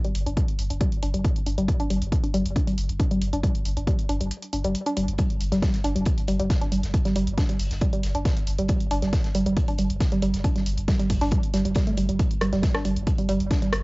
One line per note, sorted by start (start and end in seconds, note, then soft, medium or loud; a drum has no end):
0.05 0.08 G3 loud
0.05 closed hi-hat soft
0.15 0.26 G1 medium
0.15 open hi-hat loud
0.26 0.37 G1 medium
0.26 0.32 D4 loud
0.26 closed hi-hat soft
0.37 0.43 G3 medium
0.37 kick loud
0.37 closed hi-hat medium
0.48 closed hi-hat soft
0.59 0.70 G1 medium
0.59 open hi-hat loud
0.70 0.81 G1 medium
0.70 0.78 D4 medium
0.70 closed hi-hat medium
0.81 0.84 G3 loud
0.81 kick loud
0.81 closed hi-hat medium
0.92 closed hi-hat soft
1.03 1.13 G1 loud
1.03 1.08 D4 loud
1.03 open hi-hat loud
1.14 1.24 G1 medium
1.14 1.19 G3 medium
1.14 closed hi-hat medium
1.25 kick loud
1.25 closed hi-hat medium
1.36 closed hi-hat soft
1.46 1.57 G1 loud
1.46 1.55 D4 medium
1.46 open hi-hat loud
1.58 1.68 G1 medium
1.58 1.61 G3 loud
1.58 closed hi-hat medium
1.68 kick loud
1.68 closed hi-hat medium
1.80 1.85 D4 loud
1.80 closed hi-hat medium
1.90 2.01 G1 loud
1.90 1.96 G3 medium
1.90 open hi-hat loud
2.02 2.12 G1 medium
2.02 closed hi-hat soft
2.12 kick loud
2.12 closed hi-hat medium
2.24 2.31 D4 medium
2.24 closed hi-hat medium
2.34 2.45 G1 loud
2.34 2.37 G3 loud
2.34 open hi-hat loud
2.45 2.56 G1 medium
2.45 closed hi-hat medium
2.56 2.62 D4 loud
2.56 kick loud
2.56 closed hi-hat medium
2.67 2.73 G3 medium
2.67 open hi-hat medium
2.78 2.89 G1 loud
2.78 open hi-hat loud
2.89 3.00 G1 medium
2.89 closed hi-hat soft
3.00 3.08 D4 medium
3.00 kick loud
3.00 closed hi-hat medium
3.11 3.14 G3 loud
3.11 closed hi-hat medium
3.22 3.32 G1 loud
3.22 open hi-hat loud
3.33 3.43 G1 medium
3.33 3.38 D4 loud
3.33 closed hi-hat medium
3.43 3.49 G3 medium
3.43 kick loud
3.43 closed hi-hat medium
3.55 closed hi-hat medium
3.65 3.76 G1 medium
3.65 open hi-hat loud
3.77 3.87 G1 medium
3.77 3.85 D4 medium
3.77 closed hi-hat medium
3.87 3.91 G3 loud
3.87 kick loud
3.87 closed hi-hat medium
3.99 closed hi-hat medium
4.09 4.20 G1 loud
4.09 4.15 D4 loud
4.09 open hi-hat loud
4.21 4.31 G1 medium
4.21 4.26 G3 medium
4.21 closed hi-hat medium
4.31 closed hi-hat medium
4.42 closed hi-hat medium
4.53 4.64 G1 loud
4.53 4.61 D4 medium
4.53 open hi-hat loud
4.64 4.75 G1 medium
4.64 4.68 G3 loud
4.64 closed hi-hat medium
4.75 closed hi-hat medium
4.86 4.92 D4 loud
4.86 closed hi-hat medium
4.97 5.08 G1 loud
4.97 5.02 G3 medium
4.97 open hi-hat loud
5.08 5.18 G1 medium
5.08 closed hi-hat medium
5.18 5.24 G3 medium
5.18 kick loud
5.18 closed hi-hat medium
5.18 closed hi-hat loud
5.30 closed hi-hat medium
5.41 5.51 G1 loud
5.41 closed hi-hat medium
5.41 open hi-hat loud
5.52 5.62 G1 medium
5.52 5.57 G3 loud
5.52 snare soft
5.52 closed hi-hat medium
5.62 5.66 G3 loud
5.62 kick loud
5.62 snare loud
5.62 closed hi-hat loud
5.62 closed hi-hat medium
5.73 snare medium
5.73 closed hi-hat medium
5.84 5.95 G1 loud
5.84 5.90 D4 loud
5.84 closed hi-hat medium
5.84 open hi-hat loud
5.96 6.06 G1 medium
5.96 6.01 G3 medium
5.96 closed hi-hat medium
6.06 kick loud
6.06 closed hi-hat medium
6.06 closed hi-hat loud
6.18 open hi-hat medium
6.28 6.39 G1 loud
6.28 6.34 G3 loud
6.28 closed hi-hat medium
6.28 open hi-hat loud
6.40 6.50 G1 medium
6.40 6.43 G3 loud
6.40 closed hi-hat medium
6.50 kick loud
6.50 snare loud
6.50 closed hi-hat medium
6.61 6.67 D4 loud
6.61 closed hi-hat medium
6.72 6.83 G1 loud
6.72 6.78 G3 medium
6.72 closed hi-hat medium
6.72 open hi-hat loud
6.83 6.94 G1 medium
6.83 snare soft
6.83 closed hi-hat medium
6.94 kick loud
6.94 closed hi-hat medium
7.05 7.10 G3 loud
7.05 snare soft
7.05 closed hi-hat medium
7.16 7.27 G1 medium
7.16 7.19 G3 loud
7.16 closed hi-hat medium
7.16 open hi-hat loud
7.27 7.37 G1 medium
7.27 closed hi-hat medium
7.38 7.43 D4 loud
7.38 kick loud
7.38 snare loud
7.38 closed hi-hat loud
7.38 closed hi-hat medium
7.49 7.54 G3 medium
7.49 closed hi-hat soft
7.49 closed hi-hat medium
7.59 7.70 G1 loud
7.59 open hi-hat medium
7.59 open hi-hat loud
7.71 7.81 G1 medium
7.71 snare soft
7.71 closed hi-hat medium
7.81 7.87 G3 loud
7.81 kick loud
7.81 closed hi-hat medium
7.81 closed hi-hat loud
7.93 7.96 G3 loud
7.93 closed hi-hat medium
8.03 8.14 G1 loud
8.03 snare soft
8.03 closed hi-hat medium
8.03 open hi-hat loud
8.15 8.25 G1 medium
8.15 8.20 D4 loud
8.15 closed hi-hat medium
8.25 8.31 G3 medium
8.25 kick loud
8.25 snare loud
8.25 closed hi-hat medium
8.37 closed hi-hat medium
8.47 8.58 G1 loud
8.47 closed hi-hat medium
8.47 open hi-hat loud
8.59 8.69 G1 medium
8.59 8.64 G3 loud
8.59 closed hi-hat medium
8.68 8.72 G3 loud
8.68 kick loud
8.68 closed hi-hat medium
8.68 closed hi-hat loud
8.80 closed hi-hat medium
8.91 9.02 G1 loud
8.91 8.97 D4 loud
8.91 closed hi-hat medium
8.91 open hi-hat loud
9.02 9.13 G1 medium
9.02 9.08 G3 medium
9.02 snare soft
9.02 closed hi-hat medium
9.13 kick loud
9.13 snare loud
9.13 closed hi-hat medium
9.13 closed hi-hat loud
9.24 snare medium
9.24 closed hi-hat medium
9.35 9.46 G1 loud
9.35 9.40 G3 loud
9.35 closed hi-hat medium
9.35 open hi-hat loud
9.46 9.56 G1 medium
9.46 9.49 G3 loud
9.46 closed hi-hat medium
9.57 kick loud
9.57 closed hi-hat medium
9.68 9.73 D4 loud
9.68 open hi-hat medium
9.78 9.89 G1 loud
9.78 9.84 G3 medium
9.78 closed hi-hat medium
9.78 open hi-hat loud
9.90 10.00 G1 medium
9.90 closed hi-hat medium
10.00 kick loud
10.00 snare loud
10.00 closed hi-hat medium
10.12 10.17 G3 loud
10.12 closed hi-hat medium
10.22 10.33 G1 loud
10.22 10.26 G3 loud
10.22 closed hi-hat medium
10.22 open hi-hat loud
10.34 10.44 G1 medium
10.34 snare soft
10.34 closed hi-hat medium
10.44 10.50 D4 loud
10.44 kick loud
10.44 closed hi-hat medium
10.56 10.61 G3 medium
10.56 snare soft
10.56 closed hi-hat medium
10.66 10.77 G1 medium
10.66 closed hi-hat medium
10.66 open hi-hat loud
10.78 10.88 G1 medium
10.78 closed hi-hat medium
10.88 10.94 G3 loud
10.88 kick loud
10.88 snare loud
10.88 closed hi-hat medium
10.99 11.03 G3 loud
10.99 closed hi-hat medium
10.99 closed hi-hat soft
11.10 11.21 G1 loud
11.10 kick medium
11.10 open hi-hat loud
11.10 open hi-hat medium
11.21 11.32 G1 medium
11.21 11.26 D4 loud
11.21 snare soft
11.21 closed hi-hat medium
11.31 11.37 G3 medium
11.31 kick loud
11.31 closed hi-hat medium
11.43 closed hi-hat medium
11.54 11.65 G1 loud
11.54 11.59 G3 loud
11.54 snare medium
11.54 closed hi-hat medium
11.54 open hi-hat loud
11.65 11.75 G1 medium
11.65 11.68 G3 medium
11.65 closed hi-hat medium
11.75 11.84 G3 loud
11.75 kick loud
11.75 snare loud
11.75 closed hi-hat loud
11.75 closed hi-hat medium
11.87 11.90 A3 medium
11.87 closed hi-hat medium
11.97 12.08 G1 loud
11.97 12.03 G3 medium
11.97 closed hi-hat medium
11.97 open hi-hat loud
12.09 12.19 G1 medium
12.09 12.14 G3 medium
12.09 closed hi-hat medium
12.19 kick loud
12.19 closed hi-hat medium
12.31 closed hi-hat medium
12.41 12.52 G1 loud
12.41 12.50 G3 medium
12.41 cross-stick medium
12.41 closed hi-hat medium
12.41 open hi-hat loud
12.52 12.63 G1 medium
12.52 12.56 G3 loud
12.52 snare soft
12.52 closed hi-hat soft
12.62 kick loud
12.62 snare loud
12.62 closed hi-hat medium
12.74 12.80 D4 loud
12.74 cross-stick loud
12.74 snare soft
12.74 closed hi-hat medium
12.85 12.96 G1 loud
12.85 12.91 G3 medium
12.85 closed hi-hat medium
12.85 open hi-hat loud
12.96 13.07 G1 medium
12.96 closed hi-hat medium
13.07 kick loud
13.07 closed hi-hat medium
13.18 13.26 G3 medium
13.18 open hi-hat medium
13.29 13.40 G1 loud
13.29 13.32 G3 loud
13.29 closed hi-hat medium
13.29 open hi-hat loud
13.40 13.51 G1 medium
13.40 closed hi-hat soft
13.51 13.56 D4 loud
13.51 kick loud
13.51 snare loud
13.51 closed hi-hat medium
13.62 13.67 G3 medium
13.62 closed hi-hat medium
13.73 13.83 G1 loud
13.73 cross-stick loud
13.73 closed hi-hat medium
13.73 open hi-hat loud